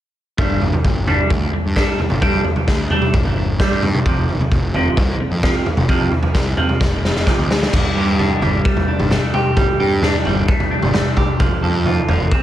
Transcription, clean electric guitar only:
0.38 0.60 G3 medium
0.38 0.60 A3 medium
0.38 0.60 D4 medium
0.62 0.82 G3 medium
0.62 0.83 A3 medium
0.85 1.05 G3 medium
0.85 1.06 A3 medium
1.07 1.29 G3 medium
1.07 1.29 A3 medium
1.07 1.30 D4 medium
1.30 1.51 G3 medium
1.30 1.51 A3 medium
1.54 1.74 G3 soft
1.54 1.74 A3 medium
1.76 1.97 G3 medium
1.76 1.98 A3 medium
1.76 1.98 D4 medium
1.99 2.20 G3 medium
1.99 2.20 A3 medium
2.22 2.44 G3 medium
2.22 2.44 A3 medium
2.22 2.44 D4 medium
2.45 2.66 G3 medium
2.68 2.89 G3 soft
2.68 2.89 A3 medium
2.91 3.13 G3 medium
2.91 3.13 A3 medium
2.91 3.13 D4 medium
3.14 3.35 G3 medium
3.14 3.35 A3 medium
3.37 3.58 G3 medium
3.37 3.58 A3 medium
3.60 3.82 G3 medium
3.60 3.82 A3 medium
3.60 3.82 D4 medium
3.84 4.04 G3 medium
3.84 4.04 A3 medium
4.06 4.28 F2 medium
4.06 4.28 C3 medium
4.06 4.28 F3 medium
4.29 4.50 F2 medium
4.29 4.50 C3 medium
4.52 4.73 F2 medium
4.52 4.73 C3 medium
4.75 4.96 F2 medium
4.75 4.96 C3 medium
4.75 4.97 F3 medium
4.97 5.18 F2 medium
5.20 5.41 F2 medium
5.20 5.41 C3 medium
5.43 5.64 F2 medium
5.43 5.65 C3 medium
5.43 5.66 F3 medium
5.66 5.87 F2 medium
5.66 5.87 C3 medium
5.89 6.11 F2 medium
5.89 6.11 C3 medium
5.89 6.11 F3 medium
6.12 6.33 F2 medium
6.12 6.33 C3 medium
6.34 6.56 F2 medium
6.34 6.56 C3 medium
6.57 6.79 F2 medium
6.57 6.79 C3 medium
6.57 6.80 F3 medium
6.80 7.01 F2 medium
6.80 7.02 C3 medium
7.03 7.25 F2 medium
7.03 7.25 C3 medium
7.26 7.47 F2 medium
7.26 7.48 C3 medium
7.26 7.49 F3 medium
7.48 7.70 F2 medium
7.48 7.70 C3 medium
7.72 8.41 G3 medium
7.95 9.10 G4 medium
8.19 8.87 D4 medium
8.42 9.56 G3 medium
8.65 9.11 A3 medium
8.88 10.02 D4 medium
9.11 10.29 A3 medium
9.34 9.79 G4 medium
9.57 10.25 G3 medium
9.80 10.94 G4 medium
10.03 10.70 D4 medium
10.26 11.39 G3 medium
10.49 10.94 A3 medium
10.71 11.40 D4 medium
10.94 12.32 A3 medium
11.17 11.40 G4 medium
11.40 12.09 F3 medium
11.63 12.43 A4 medium
11.85 12.43 F4 medium
12.09 12.43 F3 medium
12.32 12.43 C4 medium

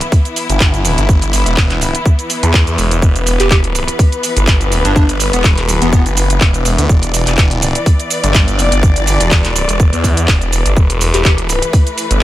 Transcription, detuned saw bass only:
0.50 0.96 G1 loud
0.98 1.44 G1 loud
1.46 1.93 E1 loud
2.43 2.76 E2 loud
2.78 3.01 E1 loud
3.02 3.38 E1 loud
3.40 3.86 E1 loud
4.37 4.83 G1 loud
4.85 5.31 G1 loud
5.33 5.80 E1 loud
5.82 6.04 E1 loud
6.06 6.39 F#1 loud
6.41 6.76 E1 loud
6.78 6.88 D2 loud
6.89 7.25 E1 loud
7.27 7.73 E1 loud
8.24 8.70 G1 loud
8.72 9.18 G1 loud
9.20 9.67 E1 loud
9.69 9.91 E1 loud
9.93 10.26 E2 medium
10.28 10.63 E1 loud
10.66 10.75 G1 loud
10.77 11.12 E1 loud
11.14 11.60 E1 loud
12.11 12.23 G1 loud

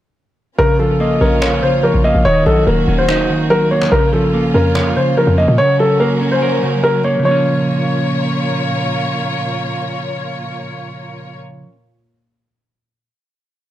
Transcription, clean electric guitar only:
0.59 1.62 C#3 loud
0.80 1.82 F3 medium
1.00 2.03 A#3 medium
1.21 2.25 C#4 loud
1.41 2.25 C#5 loud
1.63 2.25 C#3 medium
1.84 2.25 F3 medium
2.04 2.25 A#3 medium
2.25 3.28 D#3 medium
2.46 3.49 F#3 medium
2.67 3.70 A#3 medium
2.88 3.08 C#4 medium
3.09 3.92 D#4 loud
3.30 3.91 D#3 medium
3.50 3.92 F#3 medium
3.71 3.92 A#3 medium
3.92 4.95 C#3 medium
4.13 5.16 F3 medium
4.34 5.37 A#3 medium
4.54 5.59 C#4 medium
4.75 5.58 C#5 loud
4.96 5.58 C#3 medium
5.17 5.59 F3 medium
5.38 5.59 A#3 medium
5.59 6.62 C#3 medium
5.79 6.82 F#3 medium
6.00 7.03 A#3 medium
6.21 7.25 C#4 medium
6.42 7.25 A#4 loud
6.63 7.18 C#3 medium
6.84 7.23 F#3 medium
7.04 7.25 A#3 medium
7.19 11.64 C#3 medium
7.19 11.68 F3 medium
7.27 11.72 A#3 medium
7.27 11.76 C#4 medium

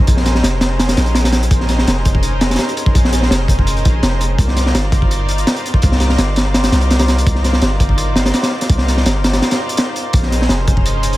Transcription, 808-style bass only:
0.08 0.42 A#1 loud
0.44 0.96 F1 medium
0.97 1.50 A#1 loud
1.51 1.86 A#1 loud
1.87 2.58 F1 medium
2.95 3.30 A#1 loud
3.31 3.84 F1 medium
3.86 4.02 A#1 loud
4.03 4.37 F1 loud
4.38 4.73 C2 loud
4.75 5.45 G1 medium
5.83 6.17 C2 loud
6.18 6.71 G1 medium
6.72 7.25 C2 loud
7.27 7.61 C2 loud
7.62 8.32 G1 medium
8.70 9.04 C2 loud
9.06 9.42 G1 medium
10.14 10.48 A#1 loud
10.50 11.17 F1 medium

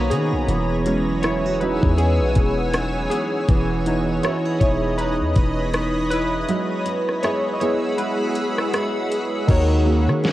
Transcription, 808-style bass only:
0.00 0.12 B1 loud
0.11 0.34 D#3 medium
0.33 0.48 B1 loud
0.48 1.79 E1 loud
1.83 2.22 E2 loud
2.20 2.35 B1 medium
2.36 3.08 E1 loud
3.49 4.21 E1 loud
4.61 5.22 E1 loud
5.20 5.35 E2 loud
5.36 6.45 E1 loud
9.49 10.09 D#2 loud
10.07 10.32 D#3 loud

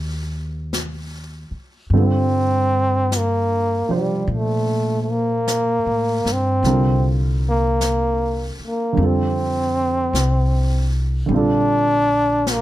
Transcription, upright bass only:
0.00 1.47 D#2 medium
1.51 muted upright bass stroke soft
1.90 3.84 G2 medium
3.89 muted upright bass stroke soft
4.27 5.81 A#2 medium
5.86 6.22 A2 medium
6.25 6.61 G2 medium
6.63 8.54 C2 medium
8.59 muted upright bass stroke soft
8.97 10.10 F2 medium
10.13 11.26 C2 medium
11.29 12.62 A#1 medium

